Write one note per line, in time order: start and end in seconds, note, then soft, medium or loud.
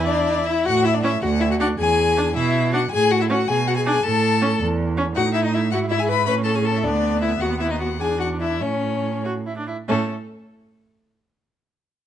0.00 0.46 E2 medium
0.00 0.44 E4 medium
0.06 0.43 D4 medium
0.06 0.48 D5 medium
0.46 0.67 E4 medium
0.46 0.65 E5 medium
0.65 1.13 A2 medium
0.65 0.87 F#4 medium
0.65 0.84 F#5 loud
0.85 0.96 E4 medium
0.85 0.96 E5 medium
0.94 1.03 D4 medium
0.94 1.02 D5 medium
1.03 1.12 C#4 medium
1.03 1.11 E4 medium
1.03 1.21 E5 medium
1.22 1.69 D2 medium
1.22 1.29 F#4 medium
1.22 1.43 F#5 medium
1.40 1.44 E4 medium
1.40 1.50 E5 medium
1.50 1.58 F#4 medium
1.50 1.55 F#5 medium
1.59 1.69 D4 medium
1.59 1.67 F#4 medium
1.59 1.68 F#5 medium
1.78 2.26 E2 medium
1.78 2.34 G#4 medium
1.78 2.34 G#5 loud
2.17 2.25 D4 medium
2.35 2.82 B2 medium
2.35 2.72 E4 medium
2.35 2.72 E5 medium
2.73 2.82 D4 medium
2.73 2.81 F#4 medium
2.73 2.91 F#5 medium
2.91 3.39 A2 medium
2.91 3.13 G#4 medium
2.91 3.13 G#5 loud
3.11 3.23 F#4 medium
3.11 3.20 F#5 medium
3.21 3.30 E4 medium
3.21 3.24 E5 medium
3.30 3.38 C#4 medium
3.30 3.48 F#4 medium
3.30 3.50 F#5 medium
3.48 3.95 B2 medium
3.48 3.56 G#4 medium
3.48 3.69 G#5 loud
3.67 3.77 F#4 medium
3.67 3.76 F#5 medium
3.76 3.86 G#4 medium
3.76 3.85 G#5 medium
3.86 3.95 D4 medium
3.86 4.04 G#4 medium
3.86 4.05 G#5 medium
4.04 4.50 A2 medium
4.04 4.59 A4 medium
4.04 4.59 A5 medium
4.42 4.50 C#4 medium
4.60 5.06 E2 medium
4.97 5.06 C#4 medium
5.15 5.73 A2 medium
5.15 5.68 D#4 medium
5.15 5.24 F#4 medium
5.15 5.33 F#5 medium
5.34 5.44 E4 medium
5.34 5.43 E5 medium
5.44 5.48 D#4 medium
5.44 5.55 D#5 medium
5.53 5.62 E4 medium
5.53 5.71 E5 medium
5.71 6.29 G#2 medium
5.71 6.24 E4 medium
5.71 5.80 F#4 medium
5.71 5.79 F#5 medium
5.90 5.95 E4 medium
5.90 6.01 E5 medium
6.00 6.10 G#4 medium
6.00 6.08 G#5 medium
6.08 6.27 B4 medium
6.08 6.25 B5 medium
6.26 6.85 A2 medium
6.26 6.80 C#4 medium
6.26 6.35 B4 medium
6.26 6.34 B5 medium
6.45 6.57 A4 medium
6.45 6.57 A5 medium
6.55 6.66 G#4 medium
6.55 6.66 G#5 medium
6.65 6.85 A4 medium
6.65 6.78 A5 medium
6.76 6.85 E5 soft
6.83 7.40 D2 medium
6.83 7.96 B3 medium
6.83 7.21 D4 medium
6.83 7.21 D5 medium
7.21 7.29 E4 medium
7.21 7.42 E5 medium
7.40 8.02 D#2 medium
7.40 7.49 F#4 medium
7.40 7.59 F#5 medium
7.60 7.72 E4 medium
7.60 7.70 E5 medium
7.71 7.79 D#4 medium
7.71 7.80 D#5 medium
7.80 7.88 F#4 soft
7.80 8.02 F#5 medium
7.99 8.63 E2 soft
7.99 8.57 D4 soft
7.99 8.19 G#4 medium
7.99 8.20 G#5 medium
8.19 8.27 F#4 soft
8.19 8.28 F#5 medium
8.40 8.63 E4 medium
8.40 8.64 E5 medium
8.61 9.68 A2 soft
8.61 9.16 C#4 soft
8.61 9.25 C#4 soft
8.61 9.25 C#5 medium
9.25 9.33 F#4 medium
9.46 9.57 E4 soft
9.57 9.67 D4 soft
9.68 9.76 E4 soft
9.88 10.11 A2 medium
9.88 10.11 A3 soft
9.88 10.11 C#4 medium
9.88 10.11 A4 medium